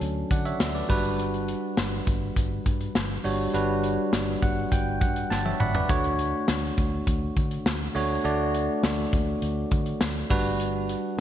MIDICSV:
0, 0, Header, 1, 4, 480
1, 0, Start_track
1, 0, Key_signature, 2, "major"
1, 0, Tempo, 588235
1, 970, Time_signature, 4, 2, 24, 8
1, 9140, End_track
2, 0, Start_track
2, 0, Title_t, "Tine electric piano"
2, 0, Program_c, 0, 4
2, 0, Control_c, 0, 64, 127
2, 0, Note_on_c, 0, 54, 84
2, 0, Note_on_c, 0, 61, 72
2, 0, Note_on_c, 0, 62, 71
2, 0, Note_on_c, 0, 69, 88
2, 254, Note_on_c, 0, 78, 66
2, 257, Note_on_c, 0, 74, 52
2, 366, Note_off_c, 0, 78, 0
2, 368, Note_off_c, 0, 74, 0
2, 371, Note_on_c, 0, 76, 69
2, 374, Note_on_c, 0, 73, 58
2, 598, Note_off_c, 0, 76, 0
2, 600, Note_off_c, 0, 73, 0
2, 609, Note_on_c, 0, 74, 64
2, 615, Note_on_c, 0, 71, 54
2, 723, Note_off_c, 0, 71, 0
2, 723, Note_on_c, 0, 55, 89
2, 727, Note_off_c, 0, 62, 0
2, 727, Note_on_c, 0, 62, 81
2, 730, Note_on_c, 0, 66, 80
2, 733, Note_on_c, 0, 71, 95
2, 738, Control_c, 0, 64, 0
2, 743, Note_off_c, 0, 54, 0
2, 744, Note_off_c, 0, 61, 0
2, 747, Note_off_c, 0, 69, 0
2, 837, Note_off_c, 0, 74, 0
2, 890, Control_c, 0, 64, 127
2, 1494, Note_off_c, 0, 55, 0
2, 1496, Note_off_c, 0, 62, 0
2, 1498, Note_off_c, 0, 66, 0
2, 1500, Note_off_c, 0, 71, 0
2, 2644, Note_on_c, 0, 55, 87
2, 2648, Note_on_c, 0, 62, 78
2, 2650, Note_on_c, 0, 66, 74
2, 2654, Note_on_c, 0, 73, 91
2, 2838, Note_off_c, 0, 55, 0
2, 2840, Note_off_c, 0, 62, 0
2, 2841, Note_off_c, 0, 66, 0
2, 2843, Note_off_c, 0, 73, 0
2, 2887, Note_on_c, 0, 55, 77
2, 2890, Note_on_c, 0, 62, 73
2, 2893, Note_on_c, 0, 66, 72
2, 2896, Note_on_c, 0, 71, 93
2, 3610, Note_on_c, 0, 78, 72
2, 3653, Note_off_c, 0, 55, 0
2, 3654, Note_off_c, 0, 62, 0
2, 3656, Note_off_c, 0, 66, 0
2, 3657, Note_off_c, 0, 71, 0
2, 3833, Note_off_c, 0, 78, 0
2, 3849, Note_on_c, 0, 79, 75
2, 4073, Note_off_c, 0, 79, 0
2, 4087, Note_on_c, 0, 78, 67
2, 4312, Note_off_c, 0, 78, 0
2, 4329, Note_on_c, 0, 81, 74
2, 4450, Note_on_c, 0, 76, 59
2, 4456, Note_on_c, 0, 73, 53
2, 4553, Note_off_c, 0, 81, 0
2, 4564, Note_off_c, 0, 76, 0
2, 4567, Note_off_c, 0, 73, 0
2, 4568, Note_on_c, 0, 78, 70
2, 4568, Note_on_c, 0, 83, 69
2, 4573, Note_on_c, 0, 74, 58
2, 4681, Note_off_c, 0, 74, 0
2, 4683, Note_off_c, 0, 78, 0
2, 4691, Note_on_c, 0, 74, 64
2, 4695, Note_on_c, 0, 71, 52
2, 4792, Note_off_c, 0, 83, 0
2, 4807, Note_on_c, 0, 57, 81
2, 4810, Note_on_c, 0, 62, 76
2, 4813, Note_on_c, 0, 66, 72
2, 4817, Note_on_c, 0, 73, 92
2, 4818, Control_c, 0, 64, 0
2, 4918, Note_off_c, 0, 74, 0
2, 4920, Note_off_c, 0, 71, 0
2, 4987, Control_c, 0, 64, 127
2, 5573, Note_off_c, 0, 57, 0
2, 5575, Note_off_c, 0, 62, 0
2, 5576, Note_off_c, 0, 66, 0
2, 5578, Note_off_c, 0, 73, 0
2, 6485, Note_on_c, 0, 57, 82
2, 6489, Note_on_c, 0, 62, 76
2, 6491, Note_on_c, 0, 66, 76
2, 6495, Note_on_c, 0, 73, 95
2, 6679, Note_off_c, 0, 57, 0
2, 6681, Note_off_c, 0, 62, 0
2, 6681, Note_off_c, 0, 66, 0
2, 6684, Note_off_c, 0, 73, 0
2, 6726, Note_on_c, 0, 57, 82
2, 6729, Note_on_c, 0, 62, 73
2, 6732, Note_on_c, 0, 66, 76
2, 6735, Note_on_c, 0, 74, 92
2, 7492, Note_off_c, 0, 57, 0
2, 7494, Note_off_c, 0, 62, 0
2, 7495, Note_off_c, 0, 66, 0
2, 7497, Note_off_c, 0, 74, 0
2, 8403, Note_on_c, 0, 55, 88
2, 8406, Note_on_c, 0, 62, 78
2, 8411, Note_on_c, 0, 66, 82
2, 8413, Note_on_c, 0, 71, 98
2, 8420, Control_c, 0, 64, 0
2, 8547, Control_c, 0, 64, 127
2, 9140, Note_off_c, 0, 55, 0
2, 9140, Note_off_c, 0, 62, 0
2, 9140, Note_off_c, 0, 66, 0
2, 9140, Note_off_c, 0, 71, 0
2, 9140, End_track
3, 0, Start_track
3, 0, Title_t, "Fingered electric bass"
3, 0, Program_c, 1, 33
3, 9, Note_on_c, 1, 38, 111
3, 182, Note_off_c, 1, 38, 0
3, 251, Note_on_c, 1, 50, 94
3, 424, Note_off_c, 1, 50, 0
3, 490, Note_on_c, 1, 38, 90
3, 663, Note_off_c, 1, 38, 0
3, 731, Note_on_c, 1, 31, 99
3, 1249, Note_off_c, 1, 31, 0
3, 1451, Note_on_c, 1, 31, 99
3, 1624, Note_off_c, 1, 31, 0
3, 1689, Note_on_c, 1, 31, 104
3, 1862, Note_off_c, 1, 31, 0
3, 1928, Note_on_c, 1, 31, 115
3, 2101, Note_off_c, 1, 31, 0
3, 2170, Note_on_c, 1, 43, 96
3, 2343, Note_off_c, 1, 43, 0
3, 2409, Note_on_c, 1, 31, 91
3, 2582, Note_off_c, 1, 31, 0
3, 2649, Note_on_c, 1, 31, 92
3, 2822, Note_off_c, 1, 31, 0
3, 2889, Note_on_c, 1, 31, 106
3, 3235, Note_off_c, 1, 31, 0
3, 3369, Note_on_c, 1, 31, 100
3, 3542, Note_off_c, 1, 31, 0
3, 3610, Note_on_c, 1, 31, 108
3, 3782, Note_off_c, 1, 31, 0
3, 3850, Note_on_c, 1, 31, 105
3, 4091, Note_on_c, 1, 43, 90
3, 4103, Note_off_c, 1, 31, 0
3, 4264, Note_off_c, 1, 43, 0
3, 4330, Note_on_c, 1, 31, 98
3, 4503, Note_off_c, 1, 31, 0
3, 4570, Note_on_c, 1, 31, 96
3, 4743, Note_off_c, 1, 31, 0
3, 4809, Note_on_c, 1, 38, 107
3, 5155, Note_off_c, 1, 38, 0
3, 5291, Note_on_c, 1, 38, 102
3, 5463, Note_off_c, 1, 38, 0
3, 5530, Note_on_c, 1, 38, 99
3, 5703, Note_off_c, 1, 38, 0
3, 5769, Note_on_c, 1, 38, 103
3, 5942, Note_off_c, 1, 38, 0
3, 6011, Note_on_c, 1, 50, 92
3, 6183, Note_off_c, 1, 50, 0
3, 6250, Note_on_c, 1, 38, 96
3, 6423, Note_off_c, 1, 38, 0
3, 6487, Note_on_c, 1, 38, 102
3, 6661, Note_off_c, 1, 38, 0
3, 6728, Note_on_c, 1, 38, 99
3, 7074, Note_off_c, 1, 38, 0
3, 7209, Note_on_c, 1, 38, 94
3, 7382, Note_off_c, 1, 38, 0
3, 7450, Note_on_c, 1, 38, 94
3, 7623, Note_off_c, 1, 38, 0
3, 7687, Note_on_c, 1, 38, 114
3, 7861, Note_off_c, 1, 38, 0
3, 7928, Note_on_c, 1, 50, 93
3, 8102, Note_off_c, 1, 50, 0
3, 8168, Note_on_c, 1, 38, 91
3, 8341, Note_off_c, 1, 38, 0
3, 8408, Note_on_c, 1, 31, 93
3, 8927, Note_off_c, 1, 31, 0
3, 9140, End_track
4, 0, Start_track
4, 0, Title_t, "Drums"
4, 11, Note_on_c, 9, 42, 80
4, 92, Note_off_c, 9, 42, 0
4, 251, Note_on_c, 9, 36, 98
4, 252, Note_on_c, 9, 42, 75
4, 333, Note_off_c, 9, 36, 0
4, 333, Note_off_c, 9, 42, 0
4, 371, Note_on_c, 9, 42, 54
4, 452, Note_off_c, 9, 42, 0
4, 491, Note_on_c, 9, 38, 115
4, 492, Note_on_c, 9, 42, 81
4, 572, Note_off_c, 9, 38, 0
4, 573, Note_off_c, 9, 42, 0
4, 731, Note_on_c, 9, 36, 102
4, 733, Note_on_c, 9, 46, 80
4, 813, Note_off_c, 9, 36, 0
4, 815, Note_off_c, 9, 46, 0
4, 974, Note_on_c, 9, 42, 79
4, 1056, Note_off_c, 9, 42, 0
4, 1093, Note_on_c, 9, 42, 50
4, 1174, Note_off_c, 9, 42, 0
4, 1212, Note_on_c, 9, 42, 79
4, 1293, Note_off_c, 9, 42, 0
4, 1447, Note_on_c, 9, 38, 118
4, 1451, Note_on_c, 9, 42, 89
4, 1529, Note_off_c, 9, 38, 0
4, 1532, Note_off_c, 9, 42, 0
4, 1690, Note_on_c, 9, 36, 94
4, 1692, Note_on_c, 9, 42, 68
4, 1772, Note_off_c, 9, 36, 0
4, 1773, Note_off_c, 9, 42, 0
4, 1929, Note_on_c, 9, 36, 89
4, 1930, Note_on_c, 9, 42, 81
4, 2011, Note_off_c, 9, 36, 0
4, 2011, Note_off_c, 9, 42, 0
4, 2170, Note_on_c, 9, 42, 75
4, 2171, Note_on_c, 9, 36, 94
4, 2251, Note_off_c, 9, 42, 0
4, 2252, Note_off_c, 9, 36, 0
4, 2290, Note_on_c, 9, 42, 56
4, 2372, Note_off_c, 9, 42, 0
4, 2410, Note_on_c, 9, 38, 110
4, 2411, Note_on_c, 9, 42, 87
4, 2491, Note_off_c, 9, 38, 0
4, 2492, Note_off_c, 9, 42, 0
4, 2653, Note_on_c, 9, 46, 79
4, 2734, Note_off_c, 9, 46, 0
4, 2892, Note_on_c, 9, 42, 84
4, 2974, Note_off_c, 9, 42, 0
4, 3130, Note_on_c, 9, 42, 78
4, 3212, Note_off_c, 9, 42, 0
4, 3369, Note_on_c, 9, 38, 114
4, 3372, Note_on_c, 9, 42, 92
4, 3372, Note_on_c, 9, 54, 63
4, 3450, Note_off_c, 9, 38, 0
4, 3453, Note_off_c, 9, 54, 0
4, 3454, Note_off_c, 9, 42, 0
4, 3611, Note_on_c, 9, 36, 93
4, 3613, Note_on_c, 9, 42, 64
4, 3692, Note_off_c, 9, 36, 0
4, 3695, Note_off_c, 9, 42, 0
4, 3850, Note_on_c, 9, 36, 95
4, 3853, Note_on_c, 9, 42, 81
4, 3932, Note_off_c, 9, 36, 0
4, 3935, Note_off_c, 9, 42, 0
4, 4091, Note_on_c, 9, 36, 96
4, 4093, Note_on_c, 9, 42, 73
4, 4173, Note_off_c, 9, 36, 0
4, 4175, Note_off_c, 9, 42, 0
4, 4211, Note_on_c, 9, 42, 57
4, 4293, Note_off_c, 9, 42, 0
4, 4334, Note_on_c, 9, 38, 59
4, 4415, Note_off_c, 9, 38, 0
4, 4453, Note_on_c, 9, 48, 59
4, 4535, Note_off_c, 9, 48, 0
4, 4572, Note_on_c, 9, 45, 89
4, 4653, Note_off_c, 9, 45, 0
4, 4689, Note_on_c, 9, 43, 88
4, 4771, Note_off_c, 9, 43, 0
4, 4810, Note_on_c, 9, 36, 113
4, 4810, Note_on_c, 9, 42, 82
4, 4891, Note_off_c, 9, 42, 0
4, 4892, Note_off_c, 9, 36, 0
4, 4930, Note_on_c, 9, 42, 50
4, 5012, Note_off_c, 9, 42, 0
4, 5050, Note_on_c, 9, 42, 78
4, 5132, Note_off_c, 9, 42, 0
4, 5288, Note_on_c, 9, 38, 117
4, 5291, Note_on_c, 9, 42, 90
4, 5291, Note_on_c, 9, 54, 67
4, 5369, Note_off_c, 9, 38, 0
4, 5372, Note_off_c, 9, 54, 0
4, 5373, Note_off_c, 9, 42, 0
4, 5531, Note_on_c, 9, 36, 94
4, 5533, Note_on_c, 9, 42, 66
4, 5613, Note_off_c, 9, 36, 0
4, 5615, Note_off_c, 9, 42, 0
4, 5770, Note_on_c, 9, 36, 96
4, 5771, Note_on_c, 9, 42, 82
4, 5852, Note_off_c, 9, 36, 0
4, 5853, Note_off_c, 9, 42, 0
4, 6010, Note_on_c, 9, 42, 75
4, 6011, Note_on_c, 9, 36, 93
4, 6092, Note_off_c, 9, 42, 0
4, 6093, Note_off_c, 9, 36, 0
4, 6129, Note_on_c, 9, 42, 55
4, 6210, Note_off_c, 9, 42, 0
4, 6250, Note_on_c, 9, 38, 111
4, 6250, Note_on_c, 9, 54, 70
4, 6251, Note_on_c, 9, 42, 80
4, 6331, Note_off_c, 9, 54, 0
4, 6332, Note_off_c, 9, 38, 0
4, 6333, Note_off_c, 9, 42, 0
4, 6492, Note_on_c, 9, 46, 82
4, 6573, Note_off_c, 9, 46, 0
4, 6731, Note_on_c, 9, 42, 80
4, 6813, Note_off_c, 9, 42, 0
4, 6973, Note_on_c, 9, 42, 81
4, 7054, Note_off_c, 9, 42, 0
4, 7209, Note_on_c, 9, 38, 112
4, 7212, Note_on_c, 9, 54, 66
4, 7213, Note_on_c, 9, 42, 89
4, 7291, Note_off_c, 9, 38, 0
4, 7293, Note_off_c, 9, 54, 0
4, 7294, Note_off_c, 9, 42, 0
4, 7450, Note_on_c, 9, 36, 95
4, 7452, Note_on_c, 9, 42, 64
4, 7532, Note_off_c, 9, 36, 0
4, 7534, Note_off_c, 9, 42, 0
4, 7688, Note_on_c, 9, 42, 82
4, 7769, Note_off_c, 9, 42, 0
4, 7926, Note_on_c, 9, 42, 76
4, 7929, Note_on_c, 9, 36, 98
4, 8007, Note_off_c, 9, 42, 0
4, 8010, Note_off_c, 9, 36, 0
4, 8045, Note_on_c, 9, 42, 54
4, 8127, Note_off_c, 9, 42, 0
4, 8165, Note_on_c, 9, 38, 116
4, 8165, Note_on_c, 9, 54, 67
4, 8167, Note_on_c, 9, 42, 83
4, 8246, Note_off_c, 9, 54, 0
4, 8247, Note_off_c, 9, 38, 0
4, 8248, Note_off_c, 9, 42, 0
4, 8409, Note_on_c, 9, 36, 105
4, 8409, Note_on_c, 9, 46, 82
4, 8490, Note_off_c, 9, 36, 0
4, 8490, Note_off_c, 9, 46, 0
4, 8648, Note_on_c, 9, 42, 83
4, 8730, Note_off_c, 9, 42, 0
4, 8889, Note_on_c, 9, 42, 81
4, 8971, Note_off_c, 9, 42, 0
4, 9140, End_track
0, 0, End_of_file